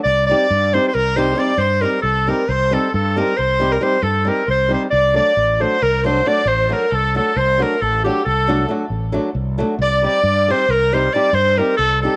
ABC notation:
X:1
M:11/8
L:1/16
Q:1/4=136
K:none
V:1 name="Clarinet"
d2 d4 c3/2 c/2 _B2 c2 d2 c2 B2 A2 B2 | c2 A2 A2 _B2 c3 B c2 A2 B2 c2 c2 | d2 d4 c2 _B2 c2 d2 c2 B2 A2 A2 | c2 _B2 A2 G2 A4 z8 z2 |
d2 d4 c2 _B2 c2 d2 c2 B2 A2 A2 |]
V:2 name="Violin"
d2 d4 c3/2 c/2 _B2 c2 d2 c2 B2 A2 B2 | c2 A2 A2 _B2 c3 B c2 A2 B2 c2 c2 | d2 d4 c2 _B2 c2 d2 c2 B2 A2 A2 | c2 _B2 A2 G2 A4 z8 z2 |
d2 d4 c2 _B2 c2 d2 c2 B2 A2 A2 |]
V:3 name="Nylon-string guitar"
z2 [G,C_EG]2 z2 [G,CEG]2 z2 [G,CEG]2 [G,CEG]2 z2 [G,CEG]2 z2 [G,CEG]2 | z2 [G,C_EG]2 z2 [G,CEG]2 z2 [G,CEG]2 [G,CEG]2 z2 [G,CEG]2 z2 [G,CEG]2 | z2 [^F,A,D^F]2 z2 [F,A,DF]2 z2 [F,A,DF]2 [F,A,DF]2 z2 [F,A,DF]2 z2 [F,A,DF]2 | z2 [^F,A,D^F]2 z2 [F,A,DF]2 z2 [F,A,DF]2 [F,A,DF]2 z2 [F,A,DF]2 z2 [F,A,DF]2 |
z2 [G,C_EG]2 z2 [G,CEG]2 z2 [G,CEG]2 [G,CEG]2 z2 [G,CEG]2 z2 [G,CEG]2 |]
V:4 name="Fretless electric bass" clef=bass
C,,4 G,,4 C,,6 G,,4 C,,4 | C,,4 G,,4 C,,6 G,,4 C,,4 | C,,4 A,,,4 C,,6 A,,,4 C,,4 | C,,4 A,,,4 C,,6 A,,,4 C,,4 |
C,,4 G,,4 C,,6 G,,4 C,,4 |]